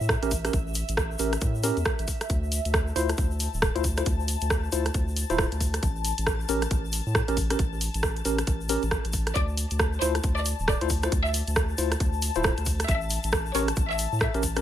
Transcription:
Already playing: E5
0.01 A2, shaker
0.09 kick, cross-stick, shaker
0.23 A1 C#4 G4 A#4, closed hi-hat, shaker
0.31 kick, open hi-hat, shaker
0.45 C#4 G4 A#4, cross-stick, closed hi-hat, shaker
0.53 A1, kick, closed hi-hat, shaker
0.67 shaker
0.74 open hi-hat, shaker
0.88 A1, closed hi-hat, shaker
0.97 kick, cross-stick, shaker
1.11 shaker
1.19 A1 C#4 G4 A#4, open hi-hat, shaker
1.33 cross-stick, closed hi-hat, shaker
1.41 A2, kick, closed hi-hat, shaker
1.55 shaker
1.63 C#4 G4 A#4, open hi-hat, shaker
1.77 E2, closed hi-hat, shaker
1.85 kick, cross-stick, shaker
1.99 A1, closed hi-hat, shaker
2.08 kick, open hi-hat, shaker
2.21 cross-stick, closed hi-hat, shaker
2.29 D2 A5, kick, closed hi-hat, shaker
2.44 shaker
2.52 open hi-hat, shaker
2.65 D2, closed hi-hat, shaker
2.74 kick, cross-stick, shaker
2.87 shaker
2.96 D2 E4 F4 C5, open hi-hat, shaker
3.09 cross-stick, closed hi-hat, shaker
3.17 D2, kick, closed hi-hat, shaker
3.31 shaker
3.40 open hi-hat, shaker
3.53 D1, shaker
3.62 kick, cross-stick, shaker
3.75 D2 E4 F4 C5, closed hi-hat, shaker
3.84 kick, open hi-hat, shaker
3.97 E4 F4 C5, cross-stick, closed hi-hat, shaker
4.06 D2, kick, closed hi-hat, shaker
4.20 shaker
4.28 open hi-hat, shaker
4.41 D2, closed hi-hat, shaker
4.50 kick, cross-stick, shaker
4.64 shaker
4.72 D2 E4 F4 C5, open hi-hat, shaker
4.85 cross-stick, closed hi-hat, shaker
4.94 D2, kick, closed hi-hat, shaker
5.08 shaker
5.16 open hi-hat, shaker
5.30 D1 E4 F4 C5, closed hi-hat, shaker
5.38 kick, cross-stick, shaker
5.52 D2, closed hi-hat, shaker
5.60 kick, open hi-hat, shaker
5.74 cross-stick, closed hi-hat, shaker
5.83 A1, kick, closed hi-hat, shaker
5.96 shaker
6.05 open hi-hat, shaker
6.18 A1, closed hi-hat, shaker
6.27 kick, cross-stick, shaker
6.40 shaker
6.49 A1 C#4 G4 A#4, open hi-hat, shaker
6.62 cross-stick, closed hi-hat, shaker
6.71 A1, kick, closed hi-hat, shaker
6.85 shaker
6.92 open hi-hat, shaker
7.06 A2, shaker
7.15 kick, cross-stick, shaker
7.28 A1 C#4 G4 A#4, closed hi-hat, shaker
7.37 kick, open hi-hat, shaker
7.50 C#4 G4 A#4, cross-stick, closed hi-hat, shaker
7.59 A1, kick, closed hi-hat, shaker
7.73 shaker
7.81 open hi-hat, shaker
7.94 A1, closed hi-hat, shaker
8.03 kick, cross-stick, shaker
8.16 closed hi-hat, shaker
8.25 A1 C#4 G4 A#4, open hi-hat, shaker
8.38 cross-stick, closed hi-hat, shaker
8.47 A1, kick, closed hi-hat, shaker
8.61 shaker
8.69 C#4 G4 A#4, open hi-hat, shaker
8.82 A1, closed hi-hat, shaker
8.91 kick, cross-stick, shaker
9.05 A1, closed hi-hat, shaker
9.13 kick, open hi-hat, shaker
9.27 cross-stick, closed hi-hat, shaker
9.35 D2 D5 A5, kick, closed hi-hat, shaker
9.48 shaker
9.57 open hi-hat, shaker
9.71 D2, closed hi-hat, shaker
9.79 kick, cross-stick, shaker
9.93 shaker
10.02 D2 E4 F4 C5, open hi-hat, shaker
10.15 cross-stick, closed hi-hat, shaker
10.23 D2, kick, closed hi-hat, shaker
10.37 D5, shaker
10.45 open hi-hat, shaker
10.59 D1, shaker
10.68 D5, kick, cross-stick, shaker
10.81 D2 E4 F4 C5, closed hi-hat, shaker
10.89 kick, open hi-hat, shaker
11.03 E4 F4 C5, cross-stick, closed hi-hat, shaker
11.12 D2, kick, closed hi-hat, shaker
11.25 E5, shaker
11.34 open hi-hat, shaker
11.47 D2, closed hi-hat, shaker
11.56 kick, cross-stick, shaker
11.69 shaker
11.78 D2 E4 F4 C5, open hi-hat, shaker
11.92 cross-stick, closed hi-hat, shaker
12.00 D2, kick, closed hi-hat, shaker
12.13 shaker
12.22 open hi-hat, shaker
12.35 D1 E4 F4 C5, closed hi-hat, shaker
12.44 kick, cross-stick, shaker
12.57 D2, closed hi-hat, shaker
12.66 kick, open hi-hat, shaker
12.80 cross-stick, closed hi-hat, shaker
12.88 A1 E5, kick, closed hi-hat, shaker
13.01 shaker
13.10 open hi-hat, shaker
13.23 A1, closed hi-hat, shaker
13.32 kick, cross-stick, shaker
13.46 shaker
13.55 A1 C#4 G4 A#4 C#5, open hi-hat, shaker
13.68 cross-stick, closed hi-hat, shaker
13.76 A1, kick, closed hi-hat, shaker
13.90 E5, shaker
13.98 open hi-hat, shaker
14.12 A2, shaker
14.20 E5, kick, cross-stick, shaker
14.34 A1 C#4 G4 A#4, closed hi-hat, shaker
14.43 kick, open hi-hat, shaker
14.56 C#4 G4 A#4, cross-stick, closed hi-hat, shaker

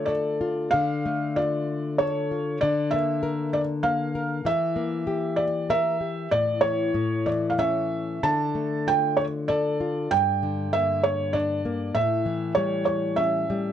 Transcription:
Already playing: D3 A3 F4
0.06 A4 D5
0.41 F4
0.71 D3 F5
1.06 A3
1.36 F4 D5
1.98 A4 C#5
2.31 F4
2.61 D3 D5
2.91 A#3 E5
3.23 A#4
3.53 D5
3.83 A#3 F5
4.15 A#4
4.45 E3 E5
4.76 A#3
5.07 G4
5.36 D5
5.70 A#4 E5
6.01 G4
6.31 A2 D5
6.61 E3 C#5
6.94 A2
7.26 E3 D5
7.50 F5
7.59 C#4 E5
8.23 D3 A5
8.55 A3
8.87 F4 G5
9.17 C#5
9.48 A4 D5
9.80 F4
10.11 G2 G5
10.43 D3
10.73 A#3 E5
11.03 C#5
11.33 D4 D5
11.65 A#3
11.95 A2 E5
12.26 E3
12.55 G3 C#5
12.85 C#5
13.16 C#4 E5
13.50 G3

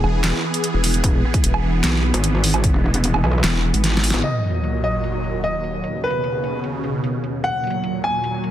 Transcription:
Already playing: E3 B3 G#4
0.04 E1, low woodblock
0.24 snare, clap, closed hi-hat
0.54 closed hi-hat
0.64 closed hi-hat
0.74 E1
0.84 open hi-hat
0.94 closed hi-hat
1.04 E1, kick, closed hi-hat
1.34 kick, closed hi-hat
1.44 E1, closed hi-hat
1.54 low woodblock
1.84 B1, snare, clap, closed hi-hat
2.14 G#1, closed hi-hat
2.24 closed hi-hat
2.44 open hi-hat
2.54 closed hi-hat, low woodblock
2.64 kick, closed hi-hat
2.74 E1
2.94 closed hi-hat
3.04 closed hi-hat
3.14 E1, low woodblock
3.24 B1, low woodblock
3.44 E1, snare, clap, closed hi-hat
3.74 G#1, closed hi-hat
3.84 snare, closed hi-hat
3.97 snare
4.04 open hi-hat
4.10 G#1, snare, closed hi-hat
4.24 D#2 A#2 F#3 D#5, closed hi-hat, crash, sub drop
4.44 closed hi-hat
4.47 closed hi-hat
4.50 closed hi-hat
4.64 closed hi-hat
4.84 D#5, closed hi-hat
5.04 closed hi-hat
5.24 closed hi-hat
5.44 D#5, closed hi-hat
5.64 closed hi-hat
5.84 B2 C#3, closed hi-hat
6.04 B4, closed hi-hat
6.07 closed hi-hat
6.10 closed hi-hat
6.24 closed hi-hat
6.44 closed hi-hat
6.64 closed hi-hat
6.84 closed hi-hat
7.04 closed hi-hat
7.24 closed hi-hat
7.44 A#2 F#3 F#5, closed hi-hat
7.64 closed hi-hat
7.67 closed hi-hat
7.70 closed hi-hat
7.84 closed hi-hat
8.04 G#5, closed hi-hat
8.24 closed hi-hat
8.44 closed hi-hat

